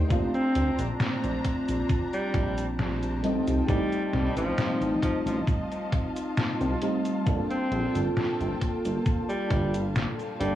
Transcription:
0.00 0.08 A3 medium
0.00 0.11 D4 medium
0.00 0.12 D#4 medium
0.00 0.13 G4 medium
0.00 3.20 C5 medium
0.08 0.25 A#1 loud
0.08 3.18 A3 medium
0.08 3.18 C4 medium
0.08 3.19 D4 medium
0.08 3.21 D4 medium
0.08 3.19 F4 loud
0.08 10.55 A5 medium
0.08 3.21 A#5 loud
0.08 kick loud
0.08 closed hi-hat medium
0.08 cabasa soft
0.34 0.87 C4 loud
0.34 closed hi-hat soft
0.34 cabasa soft
0.55 0.70 D2 loud
0.55 closed hi-hat medium
0.79 0.93 A#1 loud
0.79 closed hi-hat medium
0.79 cabasa medium
1.00 snare loud
1.00 closed hi-hat medium
1.00 cabasa soft
1.24 1.38 A#1 medium
1.24 closed hi-hat soft
1.24 cabasa soft
1.44 kick medium
1.44 closed hi-hat medium
1.68 1.83 A#1 medium
1.68 closed hi-hat medium
1.68 cabasa medium
1.89 kick loud
1.89 closed hi-hat medium
1.89 cabasa soft
2.13 2.67 G3 loud
2.13 closed hi-hat soft
2.13 cabasa soft
2.34 3.25 A#1 medium
2.34 kick loud
2.34 closed hi-hat medium
2.58 closed hi-hat medium
2.58 cabasa medium
2.79 snare loud
2.79 closed hi-hat medium
2.79 cabasa soft
3.03 closed hi-hat soft
3.03 cabasa soft
3.23 3.39 A1 medium
3.23 3.63 G3 medium
3.23 3.63 A3 medium
3.23 3.64 C4 medium
3.23 3.64 D#4 medium
3.23 10.55 F4 medium
3.23 7.23 D#5 medium
3.23 5.02 G5 medium
3.23 closed hi-hat loud
3.47 3.62 C2 medium
3.47 closed hi-hat medium
3.47 cabasa medium
3.67 3.83 A1 loud
3.67 6.76 G3 medium
3.67 4.33 G3 loud
3.67 6.77 A3 medium
3.67 6.77 C4 medium
3.67 6.78 D#4 loud
3.67 kick loud
3.67 closed hi-hat medium
3.67 cabasa soft
3.92 closed hi-hat soft
3.92 cabasa soft
4.13 4.28 C2 loud
4.13 snare medium
4.13 closed hi-hat medium
4.37 4.51 A1 medium
4.37 4.90 F3 medium
4.37 closed hi-hat medium
4.37 cabasa medium
4.58 snare loud
4.58 closed hi-hat medium
4.58 cabasa soft
4.81 4.96 A1 medium
4.81 closed hi-hat soft
4.81 cabasa soft
5.02 5.18 F3 medium
5.02 7.24 F5 medium
5.02 kick medium
5.02 closed hi-hat medium
5.26 5.40 A1 medium
5.26 5.40 F3 medium
5.26 closed hi-hat medium
5.26 cabasa medium
5.47 kick loud
5.47 closed hi-hat medium
5.47 cabasa soft
5.72 closed hi-hat soft
5.72 cabasa soft
5.92 kick loud
5.92 closed hi-hat medium
6.16 closed hi-hat medium
6.16 cabasa medium
6.37 snare loud
6.37 closed hi-hat medium
6.37 cabasa soft
6.61 6.75 C2 loud
6.61 closed hi-hat soft
6.61 cabasa soft
6.82 7.22 G3 medium
6.82 7.22 A3 medium
6.82 7.22 C4 medium
6.82 7.22 D#4 medium
6.82 closed hi-hat medium
7.05 closed hi-hat medium
7.05 cabasa medium
7.26 7.42 G1 loud
7.26 10.35 A#3 medium
7.26 10.55 A#3 medium
7.26 10.35 D4 medium
7.26 10.36 F4 medium
7.26 10.36 A4 loud
7.26 9.04 G5 medium
7.26 kick loud
7.26 closed hi-hat soft
7.26 cabasa soft
7.50 8.04 C4 loud
7.50 closed hi-hat soft
7.50 cabasa soft
7.71 7.86 A#1 loud
7.71 closed hi-hat medium
7.95 8.09 G1 medium
7.95 closed hi-hat medium
7.95 cabasa medium
8.17 snare loud
8.17 closed hi-hat medium
8.17 cabasa soft
8.40 8.54 G1 medium
8.40 closed hi-hat soft
8.40 cabasa soft
8.61 kick medium
8.61 closed hi-hat medium
8.85 8.99 G1 medium
8.85 closed hi-hat medium
8.85 cabasa medium
9.05 10.55 F5 medium
9.05 kick loud
9.05 closed hi-hat medium
9.05 cabasa soft
9.29 9.83 G3 loud
9.29 closed hi-hat soft
9.29 cabasa soft
9.51 10.06 G1 medium
9.51 kick loud
9.51 closed hi-hat medium
9.74 closed hi-hat medium
9.74 cabasa medium
9.96 snare loud
9.96 closed hi-hat medium
9.96 cabasa soft
10.19 closed hi-hat soft
10.19 cabasa soft
10.40 10.55 G1 medium
10.40 10.55 G3 loud
10.40 10.55 A#3 medium
10.40 10.55 D4 medium
10.40 10.55 F4 medium
10.40 10.55 A4 medium
10.40 closed hi-hat medium

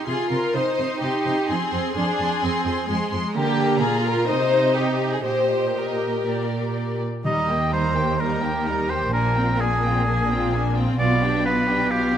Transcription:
0.07 0.15 C3 soft
0.07 0.55 F4 soft
0.07 0.31 G#4 soft
0.07 0.29 C6 soft
0.30 0.39 C3 soft
0.30 0.55 A#4 soft
0.30 0.53 C6 soft
0.54 0.63 C3 soft
0.54 1.49 D#4 soft
0.54 1.02 C5 medium
0.54 0.75 C6 soft
0.77 0.86 C3 soft
0.77 1.00 C6 soft
1.01 1.10 C3 soft
1.01 1.48 G4 soft
1.01 1.23 C6 soft
1.25 1.34 C3 soft
1.25 1.47 C6 soft
1.48 1.57 F2 soft
1.48 1.96 C4 soft
1.48 1.95 G#4 soft
1.48 1.70 C6 soft
1.71 1.80 F2 soft
1.71 1.94 C6 soft
1.95 2.04 F2 soft
1.95 2.42 D4 soft
1.95 3.10 G#4 medium
1.95 2.18 C6 soft
2.19 2.27 F2 soft
2.19 2.41 C6 soft
2.42 2.51 F2 medium
2.42 2.89 C4 soft
2.42 2.65 C6 soft
2.66 2.74 F2 soft
2.66 2.88 C6 soft
2.89 2.97 F2 soft
2.89 3.35 G#3 soft
2.89 3.12 C6 soft
3.12 3.21 F2 soft
3.12 3.36 C6 soft
3.35 3.79 D3 soft
3.35 3.82 A#3 soft
3.35 3.79 G4 medium
3.35 4.25 A#5 soft
3.82 4.29 A#2 soft
3.82 4.29 F4 medium
3.82 4.06 G#4 medium
4.06 4.29 A#4 medium
4.27 5.25 C3 soft
4.27 5.23 D#4 medium
4.27 4.76 C5 medium
4.27 4.75 D#5 soft
4.75 5.12 G4 soft
4.75 5.24 D#5 soft
5.13 5.25 G#4 soft
5.25 6.24 A#2 soft
5.25 6.97 G4 soft
5.25 5.74 C5 soft
5.25 5.75 D#5 soft
5.75 7.00 A#4 soft
5.75 6.25 D#5 soft
6.26 7.03 A#2 soft
6.26 7.03 D5 soft
7.24 9.09 D#2 soft
7.24 7.92 D#3 soft
7.24 7.47 G3 soft
7.24 7.47 D#4 soft
7.24 7.69 D#5 medium
7.24 7.47 A#5 soft
7.48 7.72 A#3 soft
7.48 7.72 G4 soft
7.48 7.73 G5 soft
7.72 7.96 G3 soft
7.72 7.96 D#4 soft
7.72 8.22 C5 soft
7.72 7.96 A#5 soft
7.95 8.19 A#3 soft
7.95 8.19 G4 soft
7.95 8.20 G5 soft
8.19 8.42 G3 soft
8.19 8.41 D#4 soft
8.19 8.92 A#4 soft
8.19 8.41 A#5 soft
8.43 8.66 A#3 soft
8.43 8.66 G4 soft
8.43 8.67 G5 soft
8.65 8.90 G3 soft
8.65 8.89 D#4 soft
8.65 8.90 A#5 soft
8.90 9.12 A#3 soft
8.90 9.13 G4 soft
8.90 9.13 C5 soft
8.90 9.13 G5 soft
9.13 10.96 A#1 soft
9.13 10.96 A#2 soft
9.13 9.35 A#3 soft
9.13 9.35 D4 soft
9.13 9.62 A#4 medium
9.13 9.35 G#5 soft
9.36 9.60 C4 soft
9.36 9.60 F4 soft
9.36 9.60 G5 soft
9.60 9.84 A#3 soft
9.60 9.84 D4 soft
9.60 10.77 G#4 soft
9.60 9.84 G#5 soft
9.83 10.07 C4 soft
9.83 10.07 F4 soft
9.83 10.07 G5 soft
10.07 10.29 A#3 soft
10.07 10.29 D4 soft
10.07 10.29 G#5 soft
10.30 10.54 C4 soft
10.30 10.54 F4 soft
10.30 10.54 G5 soft
10.53 10.77 A#3 soft
10.53 10.77 D4 soft
10.53 10.77 G#5 soft
10.76 11.00 C4 soft
10.76 10.99 F4 soft
10.76 10.99 G5 soft
10.99 12.18 B1 soft
10.99 12.18 B2 soft
10.99 11.21 B3 soft
10.99 11.21 F4 soft
10.99 11.42 D5 medium
10.99 11.21 F5 soft
11.23 11.46 D4 soft
11.23 11.46 G4 soft
11.23 11.46 G5 soft
11.45 11.70 B3 soft
11.45 11.69 F4 soft
11.45 11.93 B4 medium
11.45 11.69 F5 soft
11.69 11.92 D4 soft
11.69 11.92 G4 soft
11.69 11.92 G5 soft
11.91 12.14 B3 soft
11.91 12.13 F4 soft
11.91 12.18 G4 medium
11.91 12.14 F5 soft

